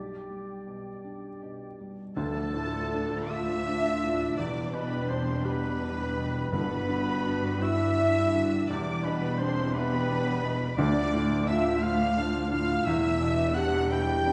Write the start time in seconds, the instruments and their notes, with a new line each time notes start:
Already playing: felt piano B1, harp B2 G3 G4 D5, clarinet G4, oboe D5, flute section G5
0.29 felt piano G3, harp B3
0.67 felt piano B2, harp G3
1.04 felt piano D4, harp D5
1.42 felt piano B2, harp G4
1.79 felt piano G3, harp D5
2.16 felt piano D2, cello section D2, double bass section D2, harp D3, timpani D3, viola section F3 D4, french horn section A3, oboe A4, flute section A4, violin section A4 A5
2.35 harp F3
2.54 felt piano A2, harp D4
2.73 harp D5
2.92 felt piano D4, harp F4
3.11 harp D5
3.28 french horn section F4, felt piano A4, violin section E5 E6, flute section E5, oboe E5, harp D6
3.49 harp A5
3.67 felt piano D4, harp D6
3.85 harp D5
4.03 felt piano A2, harp D4
4.20 harp F3
4.37 double bass section E1, cello section E2, felt piano E2, harp E3, viola section G3, french horn section D4, violin section D5 D6, oboe D5, flute section D5
4.56 harp E4
4.73 felt piano B2, harp G3, french horn section B3, violin section B4 B5, flute section B4, oboe B4
4.91 harp G4
5.09 french horn section C4, felt piano D4, violin section C5 C6, flute section C5, oboe C5, harp D5
5.27 harp G4
5.44 french horn section B3, felt piano G4, oboe B4, violin section B4 B5, flute section B4
5.63 harp D6
5.81 felt piano D4
5.98 harp G4
6.16 felt piano B2, harp G3
6.34 harp E4
6.51 double bass section G1, harp G2, timpani G2, cello section G2, felt piano G2, french horn section B3, viola section D4 F#4, oboe B4, flute section B4, violin section B4 B5
6.70 harp D3
6.89 felt piano D3, harp G3
7.07 harp F#4
7.26 felt piano D4, harp D5
7.45 harp G4
7.61 french horn section E4, felt piano F#4, oboe E5, flute section E5, harp F#5, violin section E6
7.65 violin section E5
7.81 harp D6
7.99 felt piano D4, harp F#5
8.17 harp G4
8.34 felt piano D3, harp F#4
8.52 harp G3
8.69 double bass section E1, cello section E2, felt piano E2, harp E3, viola section G3, french horn section D4, flute section D5, oboe D5, violin section D5 D6
8.87 harp G3
9.04 felt piano B2, french horn section B3, harp E4, oboe B4, flute section B4, violin section B4 B5
9.22 harp D5
9.39 french horn section C4, felt piano D4, harp G4, flute section C5, oboe C5, violin section C5 C6
9.57 harp E5
9.73 french horn section B3, felt piano E4, flute section B4, oboe B4, violin section B4 B5, harp D6
9.91 harp G5
10.09 felt piano D4, harp D6
10.26 harp E5
10.43 felt piano B2, harp D5
10.61 harp E4
10.77 double bass section D2, cello section D2, felt piano D2, harp D3, timpani D3, viola section F3 D4, french horn section D4, flute section D5, violin section D5 D6, oboe D5
10.95 harp D4
11.12 felt piano A2, harp A3
11.30 harp F4
11.46 felt piano D4, french horn section F4, harp D5, violin section E5 E6, oboe E5, flute section E5
11.65 harp A4
11.81 french horn section F4, felt piano F4, violin section F5 F6, harp F5, oboe F5, flute section F5
11.99 harp D6
12.17 felt piano D4
12.34 harp A4
12.50 felt piano A2, french horn section F4, harp F4, oboe F5, flute section F5, violin section F5 F6
12.69 harp A3
12.85 double bass section E1, cello section E2, felt piano E2, harp E3, viola section G3, french horn section E4, oboe E5, flute section E5, violin section E5 E6
13.03 harp B3
13.20 felt piano B2, harp D4
13.37 harp G4
13.55 felt piano D4, french horn section G4, harp B4, oboe F#5, flute section F#5, violin section F#5 F#6
13.73 harp D5
13.90 felt piano E4, french horn section G4, violin section G5 G6, flute section G5, oboe G5
14.08 harp B5
14.26 felt piano D4